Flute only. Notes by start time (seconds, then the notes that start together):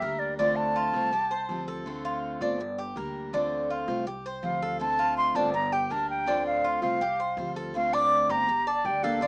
Already playing: E5
0.19 D5
0.37 D5
0.56 A5
4.44 F5
4.80 A5
5.17 C6
5.35 A5
5.54 A#5
5.73 G5
5.92 A5
6.10 G5
6.46 F5
6.83 F5
7.76 F5
7.94 D6
8.30 A#5
8.68 A5
8.86 G5
9.04 F5